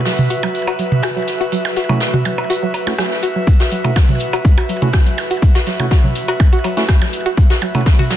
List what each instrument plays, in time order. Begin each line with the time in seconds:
Already playing: analog synth pad F#4 B4 E5
0.05 synth pluck F#3, snare, open hi-hat
0.19 mid tom
0.30 synth pluck F#4, closed hi-hat, open hi-hat
0.43 synth pluck F#3, percussion blips
0.55 closed hi-hat
0.67 synth pluck F#4, percussion blips
0.79 synth pluck F#3, closed hi-hat, open hi-hat
0.92 mid tom
1.03 synth pluck F#4, cross-stick, snare, closed hi-hat, percussion blips
1.16 synth pluck F#3, closed hi-hat
1.27 snare, closed hi-hat, open hi-hat
1.40 synth pluck F#4, closed hi-hat
1.52 synth pluck F#3, closed hi-hat
1.65 snare, percussion blips
1.76 synth pluck F#4, snare, closed hi-hat, open hi-hat
1.89 synth pluck F#3, synth stab A3 C#4 E4 F#4, mid tom, percussion blips
2.00 snare, closed hi-hat
2.14 synth pluck F#4, mid tom
2.25 synth pluck F#3, closed hi-hat, open hi-hat, percussion blips
2.38 percussion blips
2.50 synth pluck F#4, closed hi-hat
2.63 synth pluck F#3
2.74 closed hi-hat, open hi-hat, percussion blips
2.87 synth stab A3 C#4 E4 F#4, synth pluck F#4, snare, percussion blips
2.98 synth pluck F#3, cross-stick, snare, closed hi-hat
3.11 snare
3.22 synth pluck F#4, closed hi-hat, open hi-hat
3.36 synth pluck F#3
3.47 kick, closed hi-hat
3.60 synth pluck F#4, snare, closed hi-hat
3.71 synth pluck F#3, closed hi-hat, open hi-hat
3.84 synth stab A3 C#4 E4 F#4, closed hi-hat, mid tom, percussion blips
3.96 synth pluck F#4, kick, snare, open hi-hat, percussion blips
4.09 synth pluck F#3, mid tom
4.20 closed hi-hat, open hi-hat
4.33 synth pluck F#4, closed hi-hat, percussion blips
4.45 kick, closed hi-hat
4.57 synth pluck F#4, closed hi-hat, percussion blips
4.69 synth pluck F#3, closed hi-hat, open hi-hat
4.82 synth stab A3 C#4 E4 F#4, closed hi-hat, mid tom
4.93 synth pluck F#4, kick, cross-stick, snare, closed hi-hat
5.06 synth pluck F#3, closed hi-hat
5.18 snare, closed hi-hat, open hi-hat, percussion blips
5.31 synth pluck F#4, closed hi-hat
5.42 kick, closed hi-hat
5.55 synth pluck F#4, snare, closed hi-hat
5.67 synth pluck F#3, snare, closed hi-hat, open hi-hat
5.80 synth stab A3 C#4 E4 F#4, closed hi-hat, mid tom, percussion blips
5.91 synth pluck F#4, kick, snare, closed hi-hat
6.04 synth pluck F#3, mid tom
6.15 closed hi-hat, open hi-hat
6.28 synth pluck F#4, closed hi-hat, percussion blips
6.40 kick, closed hi-hat, percussion blips
6.53 synth pluck F#4, closed hi-hat
6.64 synth pluck F#3, closed hi-hat, open hi-hat, percussion blips
6.77 synth stab A3 C#4 E4 F#4, snare, closed hi-hat
6.88 synth pluck F#4, kick, cross-stick, snare, closed hi-hat
7.01 synth pluck F#3, snare, closed hi-hat, percussion blips
7.12 closed hi-hat, open hi-hat
7.26 synth pluck F#4, closed hi-hat
7.37 kick, closed hi-hat
7.50 synth pluck F#4, snare, closed hi-hat
7.62 synth pluck F#3, closed hi-hat, open hi-hat, percussion blips
7.75 synth stab A3 C#4 E4 F#4, closed hi-hat, mid tom, percussion blips
7.86 kick, snare, open hi-hat
7.99 synth pluck F#4, mid tom
8.10 synth pluck F#3, snare, open hi-hat